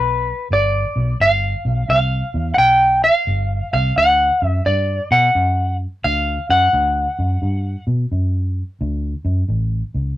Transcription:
Already playing: fingered electric bass B1, electric slide guitar B4
0.50 fingered electric bass G1, electric slide guitar D5
0.96 fingered electric bass B1
1.20 fingered electric bass G1, electric slide guitar F5
1.65 fingered electric bass B1
1.89 fingered electric bass C2, electric slide guitar F5
2.34 fingered electric bass E2
2.54 fingered electric bass B1, electric slide guitar F#5 G5
3.04 electric slide guitar F5
3.27 fingered electric bass G1
3.73 fingered electric bass C2, electric slide guitar F5
3.97 fingered electric bass D2, electric slide guitar F#5
4.42 fingered electric bass F#2, electric slide guitar E5
4.66 fingered electric bass G2, electric slide guitar D5
5.11 fingered electric bass B2, electric slide guitar F#5
5.35 fingered electric bass F#2
6.04 fingered electric bass D2, electric slide guitar F5
6.49 fingered electric bass F#2, electric slide guitar F#5
6.73 fingered electric bass D2
7.19 fingered electric bass F#2
7.42 fingered electric bass G2
7.87 fingered electric bass B2
8.12 fingered electric bass F#2
8.81 fingered electric bass D2
9.25 fingered electric bass F#2
9.48 fingered electric bass A1
9.94 fingered electric bass C#2

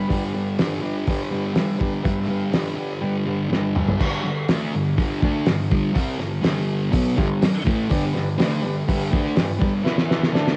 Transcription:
Already playing: distorted electric guitar D3 G3
0.07 distorted electric guitar G2, transistor combo organ G4 B4 D5, kick, open hi-hat
0.12 distorted electric guitar D3 G3
0.33 distorted electric guitar D3 G3, transistor combo organ G4 B4 D5
0.58 distorted electric guitar G2 D3 G3, transistor combo organ G4 B4 D5, snare, open hi-hat
0.81 distorted electric guitar G2 D3 G3, transistor combo organ G4 B4 D5
1.06 distorted electric guitar G2 D3 G3, transistor combo organ G4 B4 D5, kick, open hi-hat
1.30 distorted electric guitar G3, transistor combo organ G4 B4 D5
1.34 distorted electric guitar D3
1.54 distorted electric guitar G2 D3 G3, transistor combo organ G4 B4 E5, snare, open hi-hat
1.78 distorted electric guitar D3 G3, transistor combo organ G4 B4 D5, kick
2.02 distorted electric guitar G2 D3 G3, transistor combo organ G4 B4 E5, kick, open hi-hat
2.27 distorted electric guitar D3 G3, transistor combo organ G4 B4 F5
2.51 distorted electric guitar G2 D3 G3, transistor combo organ G4 B4 D5, snare, open hi-hat
2.75 distorted electric guitar G2 D3 G3, transistor combo organ G4 B4
2.80 transistor combo organ D5
3.01 distorted electric guitar G2 D3 G3, transistor combo organ G4 B4 D5
3.25 distorted electric guitar D3 G3, transistor combo organ G4 B4 D5
3.49 distorted electric guitar G2 D3 G3, transistor combo organ G4 B4 D5, snare
3.75 distorted electric guitar D3 G3, transistor combo organ G4 B4 D5, mid tom
3.89 floor tom
3.99 distorted electric guitar G2 D3 G3, kick, crash
4.24 distorted electric guitar G2 D3
4.48 distorted electric guitar D3 A3 D4, snare, open hi-hat
4.74 distorted electric guitar G2 D3
4.98 distorted electric guitar G2 D3 G3, kick, open hi-hat
5.23 distorted electric guitar D3 A3 D4, kick
5.46 distorted electric guitar G2 D3, snare, open hi-hat
5.72 distorted electric guitar G2 D3 G3, kick
5.93 distorted electric guitar C3 G3 C4, kick, open hi-hat
6.19 distorted electric guitar G2 D3, snare
6.42 distorted electric guitar G2 D3 G3, snare, open hi-hat
6.91 distorted electric guitar B2 F#3 B3, kick, open hi-hat
7.16 distorted electric guitar G2 D3 G3, kick
7.42 snare, open hi-hat
7.65 distorted electric guitar A2 E3 A3, kick
7.90 distorted electric guitar G2 D3 G3, transistor combo organ G4 B4 D5, kick, open hi-hat
8.14 distorted electric guitar G2 D3, transistor combo organ G4 B4 D5, snare
8.38 distorted electric guitar D3 A3 D4, transistor combo organ G4 B4 D5, snare, open hi-hat
8.61 distorted electric guitar G2 D3, transistor combo organ G4 B4 D5
8.88 distorted electric guitar G2 D3 G3, transistor combo organ G4 B4 E5, kick, open hi-hat
9.11 distorted electric guitar D3 A3 D4, transistor combo organ G4 B4 D5, kick
9.36 distorted electric guitar G2 D3, transistor combo organ G4 B4 D5, snare, open hi-hat
9.57 distorted electric guitar G2 D3 G3, transistor combo organ G4 B4 D5
9.62 kick
9.84 distorted electric guitar E3 B3 E4, transistor combo organ E4 B4 E5, snare
9.98 snare
10.08 transistor combo organ E4 B4 E5, snare
10.23 snare
10.32 distorted electric guitar D3 A3 D4, transistor combo organ D4 A4 D5, snare
10.47 snare

